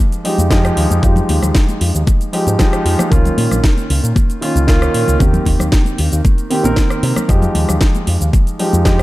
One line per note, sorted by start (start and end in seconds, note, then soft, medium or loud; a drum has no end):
0.00 0.21 F3 medium
0.00 0.22 G#3 medium
0.00 0.22 D#4 medium
0.00 0.22 G4 medium
0.12 closed hi-hat soft
0.12 shaker soft
0.24 0.48 F3 medium
0.24 0.48 G#3 medium
0.24 0.48 D#4 medium
0.24 0.48 G4 medium
0.24 open hi-hat loud
0.38 0.69 F2 medium
0.38 closed hi-hat soft
0.38 high conga medium
0.38 shaker medium
0.50 1.00 F3 medium
0.50 1.00 G#3 medium
0.50 1.00 D#4 medium
0.50 1.00 G4 loud
0.50 kick loud
0.50 snare loud
0.50 closed hi-hat medium
0.50 shaker medium
0.65 cross-stick medium
0.65 closed hi-hat soft
0.65 shaker soft
0.77 0.85 D#2 medium
0.77 open hi-hat loud
0.90 0.98 F2 medium
0.90 closed hi-hat soft
0.90 high conga medium
0.90 shaker medium
1.02 1.20 F2 medium
1.02 2.30 F3 medium
1.02 2.30 G#3 medium
1.02 2.31 D#4 medium
1.02 2.31 G4 medium
1.02 kick loud
1.02 closed hi-hat medium
1.02 shaker soft
1.16 closed hi-hat soft
1.16 low conga medium
1.16 shaker soft
1.29 1.37 D#2 medium
1.29 open hi-hat loud
1.29 high conga medium
1.43 1.50 D#2 medium
1.43 cross-stick medium
1.43 closed hi-hat soft
1.43 low conga medium
1.43 shaker medium
1.55 kick loud
1.55 snare loud
1.55 closed hi-hat medium
1.55 shaker soft
1.69 closed hi-hat soft
1.69 high conga medium
1.69 shaker soft
1.81 1.90 F2 medium
1.81 open hi-hat loud
1.95 2.03 D#2 medium
1.95 closed hi-hat soft
1.95 shaker medium
2.07 kick loud
2.07 closed hi-hat medium
2.07 high conga medium
2.07 shaker soft
2.21 closed hi-hat soft
2.21 shaker soft
2.33 2.56 F3 medium
2.33 2.56 G#3 medium
2.33 2.56 D#4 medium
2.33 2.57 G4 medium
2.33 open hi-hat loud
2.47 2.55 G#2 medium
2.47 closed hi-hat soft
2.47 high conga medium
2.47 shaker medium
2.59 3.08 F3 loud
2.59 3.08 G#3 medium
2.59 3.09 D#4 medium
2.59 3.09 G4 loud
2.59 kick loud
2.59 snare loud
2.59 closed hi-hat medium
2.59 shaker medium
2.73 cross-stick medium
2.73 closed hi-hat soft
2.73 shaker soft
2.85 2.94 F2 medium
2.85 open hi-hat loud
2.99 cross-stick medium
2.99 closed hi-hat soft
2.99 high conga medium
2.99 low conga medium
2.99 shaker medium
3.10 3.28 C#2 loud
3.10 4.39 D#3 medium
3.10 4.39 A#3 medium
3.10 4.39 C#4 medium
3.10 4.40 F4 medium
3.10 kick loud
3.10 closed hi-hat medium
3.10 shaker soft
3.25 closed hi-hat soft
3.25 low conga medium
3.25 shaker soft
3.38 3.46 A#2 medium
3.38 open hi-hat loud
3.38 high conga medium
3.51 3.59 A#1 medium
3.51 cross-stick medium
3.51 closed hi-hat soft
3.51 low conga medium
3.51 shaker medium
3.64 kick loud
3.64 snare loud
3.64 closed hi-hat medium
3.64 shaker medium
3.77 closed hi-hat soft
3.77 high conga medium
3.77 shaker soft
3.90 3.98 C#2 medium
3.90 open hi-hat loud
4.03 4.11 A#2 medium
4.03 closed hi-hat soft
4.03 shaker medium
4.16 kick loud
4.16 closed hi-hat medium
4.16 high conga loud
4.16 shaker soft
4.30 closed hi-hat soft
4.30 shaker soft
4.41 4.65 D#3 medium
4.41 4.65 A#3 medium
4.41 4.65 C#4 medium
4.41 4.65 F4 medium
4.41 open hi-hat loud
4.56 4.87 C#2 medium
4.56 closed hi-hat soft
4.56 high conga medium
4.56 shaker medium
4.67 5.17 D#3 medium
4.67 5.17 A#3 medium
4.67 5.17 C#4 medium
4.67 5.17 F4 loud
4.67 kick loud
4.67 snare loud
4.67 closed hi-hat medium
4.67 shaker medium
4.82 cross-stick medium
4.82 closed hi-hat soft
4.82 shaker soft
4.94 5.03 A#2 medium
4.94 open hi-hat loud
5.08 5.16 C#2 loud
5.08 closed hi-hat soft
5.08 high conga medium
5.08 shaker medium
5.19 5.37 D#2 medium
5.19 6.47 D#3 medium
5.19 6.48 A#3 medium
5.19 6.48 C4 medium
5.19 6.48 G4 medium
5.19 kick loud
5.19 closed hi-hat medium
5.19 shaker soft
5.34 closed hi-hat soft
5.34 low conga medium
5.34 shaker soft
5.45 5.55 D#2 medium
5.45 kick medium
5.45 open hi-hat loud
5.45 high conga loud
5.60 5.68 D#2 medium
5.60 cross-stick medium
5.60 low conga medium
5.60 shaker medium
5.72 kick loud
5.72 snare loud
5.72 closed hi-hat medium
5.72 shaker soft
5.85 closed hi-hat soft
5.85 high conga medium
5.85 shaker soft
5.98 6.07 D#2 medium
5.98 open hi-hat loud
6.12 6.20 D#2 medium
6.12 closed hi-hat soft
6.12 shaker medium
6.25 kick loud
6.25 closed hi-hat medium
6.25 high conga medium
6.25 shaker soft
6.38 closed hi-hat soft
6.38 shaker soft
6.50 6.62 D#3 medium
6.50 6.62 A#3 medium
6.50 6.62 C4 medium
6.50 6.62 G4 medium
6.50 open hi-hat loud
6.63 6.72 A#1 medium
6.63 7.25 D#3 medium
6.63 7.26 A#3 medium
6.63 7.26 C4 medium
6.63 7.26 A#4 medium
6.63 closed hi-hat soft
6.63 high conga medium
6.63 shaker medium
6.76 kick loud
6.76 snare loud
6.76 closed hi-hat medium
6.76 shaker medium
6.90 cross-stick medium
6.90 closed hi-hat soft
6.90 shaker soft
7.03 7.11 C3 medium
7.03 open hi-hat loud
7.16 cross-stick medium
7.16 closed hi-hat soft
7.16 high conga loud
7.16 low conga medium
7.16 shaker medium
7.28 7.46 F2 medium
7.28 8.56 F3 medium
7.28 8.56 G#3 medium
7.28 8.57 D#4 medium
7.28 8.57 G4 medium
7.28 kick loud
7.28 closed hi-hat medium
7.28 shaker medium
7.42 closed hi-hat soft
7.42 low conga medium
7.42 shaker soft
7.55 7.64 D#2 medium
7.55 open hi-hat loud
7.55 high conga medium
7.69 7.77 D#2 medium
7.69 cross-stick medium
7.69 closed hi-hat soft
7.69 low conga medium
7.69 shaker medium
7.81 kick loud
7.81 snare loud
7.81 closed hi-hat medium
7.81 shaker medium
7.95 closed hi-hat soft
7.95 high conga medium
7.95 shaker soft
8.07 8.16 F2 medium
8.07 open hi-hat loud
8.21 8.29 D#2 medium
8.21 closed hi-hat soft
8.21 shaker medium
8.33 kick loud
8.33 closed hi-hat medium
8.33 high conga medium
8.33 shaker medium
8.47 closed hi-hat soft
8.47 shaker soft
8.59 8.82 F3 medium
8.59 8.82 G#3 medium
8.59 8.83 D#4 medium
8.59 8.83 G4 medium
8.59 open hi-hat medium
8.73 9.03 F2 medium
8.73 closed hi-hat soft
8.73 high conga medium
8.73 shaker medium
8.85 9.03 F3 medium
8.85 9.03 G#3 medium
8.85 9.03 D#4 medium
8.85 9.03 G4 loud
8.85 kick loud
8.85 snare loud
8.85 closed hi-hat medium
8.85 shaker medium
8.99 cross-stick medium
8.99 closed hi-hat soft